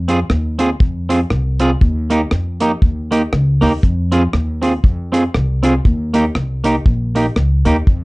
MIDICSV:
0, 0, Header, 1, 4, 480
1, 0, Start_track
1, 0, Tempo, 505051
1, 1724, Time_signature, 4, 2, 24, 8
1, 7641, End_track
2, 0, Start_track
2, 0, Title_t, "Clean electric guitar"
2, 0, Program_c, 0, 27
2, 78, Note_on_c, 0, 60, 78
2, 86, Note_on_c, 0, 65, 79
2, 94, Note_on_c, 0, 68, 94
2, 171, Note_off_c, 0, 60, 0
2, 175, Note_off_c, 0, 65, 0
2, 179, Note_off_c, 0, 68, 0
2, 558, Note_on_c, 0, 60, 73
2, 563, Note_on_c, 0, 65, 72
2, 573, Note_on_c, 0, 68, 101
2, 651, Note_off_c, 0, 60, 0
2, 654, Note_off_c, 0, 65, 0
2, 659, Note_off_c, 0, 68, 0
2, 1038, Note_on_c, 0, 60, 82
2, 1044, Note_on_c, 0, 65, 75
2, 1050, Note_on_c, 0, 68, 74
2, 1131, Note_off_c, 0, 60, 0
2, 1134, Note_off_c, 0, 65, 0
2, 1137, Note_off_c, 0, 68, 0
2, 1520, Note_on_c, 0, 60, 84
2, 1526, Note_on_c, 0, 65, 91
2, 1535, Note_on_c, 0, 68, 104
2, 1612, Note_off_c, 0, 60, 0
2, 1615, Note_off_c, 0, 65, 0
2, 1619, Note_off_c, 0, 68, 0
2, 1996, Note_on_c, 0, 58, 83
2, 2006, Note_on_c, 0, 63, 104
2, 2013, Note_on_c, 0, 67, 89
2, 2089, Note_off_c, 0, 58, 0
2, 2094, Note_off_c, 0, 63, 0
2, 2098, Note_off_c, 0, 67, 0
2, 2476, Note_on_c, 0, 58, 70
2, 2484, Note_on_c, 0, 63, 85
2, 2489, Note_on_c, 0, 67, 77
2, 2569, Note_off_c, 0, 58, 0
2, 2573, Note_off_c, 0, 63, 0
2, 2575, Note_off_c, 0, 67, 0
2, 2958, Note_on_c, 0, 58, 81
2, 2964, Note_on_c, 0, 63, 99
2, 2970, Note_on_c, 0, 67, 95
2, 3050, Note_off_c, 0, 58, 0
2, 3053, Note_off_c, 0, 63, 0
2, 3056, Note_off_c, 0, 67, 0
2, 3433, Note_on_c, 0, 58, 97
2, 3442, Note_on_c, 0, 63, 96
2, 3449, Note_on_c, 0, 67, 101
2, 3527, Note_off_c, 0, 58, 0
2, 3532, Note_off_c, 0, 63, 0
2, 3535, Note_off_c, 0, 67, 0
2, 3913, Note_on_c, 0, 60, 78
2, 3920, Note_on_c, 0, 65, 84
2, 3927, Note_on_c, 0, 68, 89
2, 4007, Note_off_c, 0, 60, 0
2, 4011, Note_off_c, 0, 65, 0
2, 4014, Note_off_c, 0, 68, 0
2, 4388, Note_on_c, 0, 60, 74
2, 4399, Note_on_c, 0, 65, 78
2, 4403, Note_on_c, 0, 68, 78
2, 4485, Note_off_c, 0, 60, 0
2, 4490, Note_off_c, 0, 65, 0
2, 4492, Note_off_c, 0, 68, 0
2, 4869, Note_on_c, 0, 60, 79
2, 4878, Note_on_c, 0, 65, 83
2, 4884, Note_on_c, 0, 68, 92
2, 4965, Note_off_c, 0, 60, 0
2, 4970, Note_off_c, 0, 65, 0
2, 4973, Note_off_c, 0, 68, 0
2, 5349, Note_on_c, 0, 60, 85
2, 5357, Note_on_c, 0, 65, 84
2, 5366, Note_on_c, 0, 68, 85
2, 5445, Note_off_c, 0, 60, 0
2, 5449, Note_off_c, 0, 65, 0
2, 5454, Note_off_c, 0, 68, 0
2, 5832, Note_on_c, 0, 58, 86
2, 5842, Note_on_c, 0, 63, 77
2, 5849, Note_on_c, 0, 67, 96
2, 5927, Note_off_c, 0, 58, 0
2, 5932, Note_off_c, 0, 63, 0
2, 5935, Note_off_c, 0, 67, 0
2, 6309, Note_on_c, 0, 58, 74
2, 6321, Note_on_c, 0, 63, 92
2, 6327, Note_on_c, 0, 67, 88
2, 6405, Note_off_c, 0, 58, 0
2, 6411, Note_off_c, 0, 63, 0
2, 6415, Note_off_c, 0, 67, 0
2, 6797, Note_on_c, 0, 58, 75
2, 6806, Note_on_c, 0, 63, 81
2, 6811, Note_on_c, 0, 67, 83
2, 6889, Note_off_c, 0, 58, 0
2, 6894, Note_off_c, 0, 63, 0
2, 6896, Note_off_c, 0, 67, 0
2, 7273, Note_on_c, 0, 58, 71
2, 7282, Note_on_c, 0, 63, 86
2, 7289, Note_on_c, 0, 67, 90
2, 7367, Note_off_c, 0, 58, 0
2, 7372, Note_off_c, 0, 63, 0
2, 7375, Note_off_c, 0, 67, 0
2, 7641, End_track
3, 0, Start_track
3, 0, Title_t, "Upright bass"
3, 0, Program_c, 1, 32
3, 0, Note_on_c, 1, 41, 91
3, 212, Note_off_c, 1, 41, 0
3, 284, Note_on_c, 1, 39, 85
3, 692, Note_off_c, 1, 39, 0
3, 763, Note_on_c, 1, 41, 88
3, 1172, Note_off_c, 1, 41, 0
3, 1243, Note_on_c, 1, 36, 91
3, 1651, Note_off_c, 1, 36, 0
3, 1723, Note_on_c, 1, 39, 103
3, 2131, Note_off_c, 1, 39, 0
3, 2202, Note_on_c, 1, 41, 84
3, 2610, Note_off_c, 1, 41, 0
3, 2681, Note_on_c, 1, 39, 87
3, 3089, Note_off_c, 1, 39, 0
3, 3162, Note_on_c, 1, 37, 97
3, 3400, Note_off_c, 1, 37, 0
3, 3446, Note_on_c, 1, 39, 88
3, 3615, Note_off_c, 1, 39, 0
3, 3643, Note_on_c, 1, 41, 107
3, 4051, Note_off_c, 1, 41, 0
3, 4118, Note_on_c, 1, 39, 91
3, 4528, Note_off_c, 1, 39, 0
3, 4598, Note_on_c, 1, 41, 100
3, 5008, Note_off_c, 1, 41, 0
3, 5082, Note_on_c, 1, 36, 101
3, 5490, Note_off_c, 1, 36, 0
3, 5560, Note_on_c, 1, 39, 101
3, 5969, Note_off_c, 1, 39, 0
3, 6040, Note_on_c, 1, 36, 84
3, 6449, Note_off_c, 1, 36, 0
3, 6516, Note_on_c, 1, 34, 93
3, 6927, Note_off_c, 1, 34, 0
3, 6997, Note_on_c, 1, 37, 84
3, 7237, Note_off_c, 1, 37, 0
3, 7272, Note_on_c, 1, 39, 89
3, 7446, Note_off_c, 1, 39, 0
3, 7479, Note_on_c, 1, 41, 95
3, 7641, Note_off_c, 1, 41, 0
3, 7641, End_track
4, 0, Start_track
4, 0, Title_t, "Drums"
4, 81, Note_on_c, 9, 42, 95
4, 176, Note_off_c, 9, 42, 0
4, 283, Note_on_c, 9, 37, 123
4, 378, Note_off_c, 9, 37, 0
4, 560, Note_on_c, 9, 42, 92
4, 655, Note_off_c, 9, 42, 0
4, 763, Note_on_c, 9, 36, 127
4, 858, Note_off_c, 9, 36, 0
4, 1047, Note_on_c, 9, 42, 97
4, 1142, Note_off_c, 9, 42, 0
4, 1239, Note_on_c, 9, 37, 91
4, 1334, Note_off_c, 9, 37, 0
4, 1516, Note_on_c, 9, 42, 91
4, 1611, Note_off_c, 9, 42, 0
4, 1724, Note_on_c, 9, 36, 124
4, 1819, Note_off_c, 9, 36, 0
4, 2000, Note_on_c, 9, 42, 91
4, 2095, Note_off_c, 9, 42, 0
4, 2197, Note_on_c, 9, 37, 118
4, 2292, Note_off_c, 9, 37, 0
4, 2476, Note_on_c, 9, 42, 95
4, 2571, Note_off_c, 9, 42, 0
4, 2680, Note_on_c, 9, 36, 124
4, 2775, Note_off_c, 9, 36, 0
4, 2964, Note_on_c, 9, 42, 96
4, 3059, Note_off_c, 9, 42, 0
4, 3162, Note_on_c, 9, 37, 111
4, 3257, Note_off_c, 9, 37, 0
4, 3438, Note_on_c, 9, 46, 54
4, 3533, Note_off_c, 9, 46, 0
4, 3641, Note_on_c, 9, 44, 69
4, 3642, Note_on_c, 9, 36, 114
4, 3736, Note_off_c, 9, 44, 0
4, 3737, Note_off_c, 9, 36, 0
4, 3916, Note_on_c, 9, 42, 93
4, 4012, Note_off_c, 9, 42, 0
4, 4119, Note_on_c, 9, 37, 115
4, 4214, Note_off_c, 9, 37, 0
4, 4396, Note_on_c, 9, 42, 89
4, 4491, Note_off_c, 9, 42, 0
4, 4598, Note_on_c, 9, 36, 116
4, 4693, Note_off_c, 9, 36, 0
4, 4884, Note_on_c, 9, 42, 98
4, 4979, Note_off_c, 9, 42, 0
4, 5079, Note_on_c, 9, 37, 100
4, 5174, Note_off_c, 9, 37, 0
4, 5355, Note_on_c, 9, 42, 96
4, 5450, Note_off_c, 9, 42, 0
4, 5561, Note_on_c, 9, 36, 119
4, 5656, Note_off_c, 9, 36, 0
4, 5835, Note_on_c, 9, 42, 95
4, 5930, Note_off_c, 9, 42, 0
4, 6036, Note_on_c, 9, 37, 106
4, 6131, Note_off_c, 9, 37, 0
4, 6313, Note_on_c, 9, 42, 90
4, 6408, Note_off_c, 9, 42, 0
4, 6517, Note_on_c, 9, 36, 124
4, 6612, Note_off_c, 9, 36, 0
4, 6801, Note_on_c, 9, 42, 87
4, 6896, Note_off_c, 9, 42, 0
4, 6996, Note_on_c, 9, 37, 97
4, 7091, Note_off_c, 9, 37, 0
4, 7274, Note_on_c, 9, 42, 88
4, 7369, Note_off_c, 9, 42, 0
4, 7480, Note_on_c, 9, 36, 115
4, 7575, Note_off_c, 9, 36, 0
4, 7641, End_track
0, 0, End_of_file